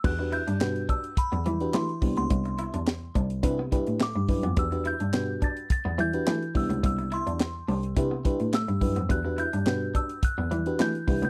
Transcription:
<<
  \new Staff \with { instrumentName = "Synth bell" } { \time 4/4 \key e \minor \tempo 4 = 106 fis'''8 g'''4 e'''8 b''4 c'''8. c'''16~ | c'''8. r2 r16 d'''4 | e'''8 g'''4 a'''8 a'''8 g'''4 e'''8 | e'''8 c'''2~ c'''8 e'''4 |
fis'''8 g'''4 e'''8 fis'''4 g'''8. g'''16 | }
  \new Staff \with { instrumentName = "FM electric piano" } { \time 4/4 \key e \minor <d' fis' g' b'>16 <d' fis' g' b'>8 r16 <d' fis' g' b'>4 r8. <d' fis' g' b'>8 r16 <b d' e' g'>8~ | <b d' e' g'>4 r4 <d' e' g' b'>16 r16 <d' e' g' b'>8 r8 <d' e' g' b'>16 r16 | <d' fis' g' b'>16 <d' fis' g' b'>8 r16 <d' fis' g' b'>4 r8. <d' fis' g' b'>8 r16 <b d' e' g'>8~ | <b d' e' g'>4 r4 <d' e' g' b'>16 r16 <d' e' g' b'>8 r8 <d' e' g' b'>16 r16 |
<d' fis' g' b'>16 <d' fis' g' b'>8 r16 <d' fis' g' b'>4 r8. <d' fis' g' b'>8 r16 <d' e' g' b'>8 | }
  \new Staff \with { instrumentName = "Clean electric guitar" } { \time 4/4 \key e \minor r8 e'16 d'16 r8 d'16 r8 b16 g16 r16 a16 r8 b16 | r8 e'16 d'16 r8 d'16 r8 b16 g16 r16 a16 r8 b16 | r8 e'16 d'16 r8 d'16 r8 b16 g16 r16 a16 r8 b16 | r8 e'16 d'16 r8 d'16 r8 b16 g16 r16 a16 r8 b16 |
r8 e'16 d'16 r8 d'16 r8 b16 g16 r16 a16 r8 b16 | }
  \new Staff \with { instrumentName = "Cello" } { \clef bass \time 4/4 \key e \minor e,8. g,16 b,8 r8. e,16 e8 e16 r16 c,16 cis,16 | c,16 r8 e,16 r8 c,8 c8 r16 a,16 r16 g,16 fis,16 f,16 | e,8. g,16 b,8 r8. e,16 e8 e16 r16 c,16 cis,16 | c,16 r8 e,16 r8 c,8 c8 r16 a,16 r16 g,16 fis,16 f,16 |
e,8. g,16 b,8 r8. e,16 e8 e16 r16 c,16 cis,16 | }
  \new DrumStaff \with { instrumentName = "Drums" } \drummode { \time 4/4 <cymc bd>8 hh16 hh16 <hc sn>16 hh16 <hh bd>16 hh16 <hh bd>16 hh16 hh16 hh16 <hc sn>16 hh16 <hho bd>16 hh16 | <hh bd>16 hh16 hh16 hh16 <hc sn>8 <hh bd>16 hh16 <hh bd>8 <hh bd>16 hh16 <hc sn>8 <hho bd>16 hh16 | <hh bd>16 hh16 hh16 hh16 <hc sn>8 <hh bd>16 hh16 <hh bd>8 hh16 hh16 <hc sn>16 hh16 <hho bd>16 hh16 | <hh bd>16 hh16 hh16 hh16 <hc sn>8 hho16 hh16 <hh bd>8 <hh bd>16 hh16 <hc sn>16 hh16 <hho bd>16 hh16 |
<hh bd>8 hh16 hh16 <hc sn>8 <hh bd>16 hh16 <hh bd>8 hh16 hh16 <hc sn>16 hh16 <hho bd>16 hh16 | }
>>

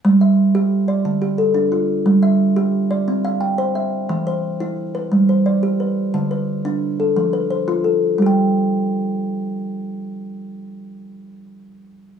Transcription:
\new Staff \with { instrumentName = "Kalimba" } { \time 12/8 \key g \mixolydian \tempo 4. = 118 << { r8 e''4. r8 d''4 g'8 a'4 f'4~ | f'8 e''4. r8 d''4 f''8 g''4 e''4~ | e''8 c''4. r8 b'4 c''8 d''4 b'4~ | b'8 b'4. r8 a'4 b'8 c''4 a'4~ |
a'8 r1 r4. | r1. | } \\ { g4 r8 g'4 r8 d4 r8 d'4 r8 | g4 r8 g'4 r8 c'4 r8 c''4 r8 | e4 r8 e'4 r8 g4 r8 g'4 r8 | d4 r8 d'4 r8 f4 r8 f'4 r8 |
<g g' g''>1.~ | <g g' g''>1. | } >> }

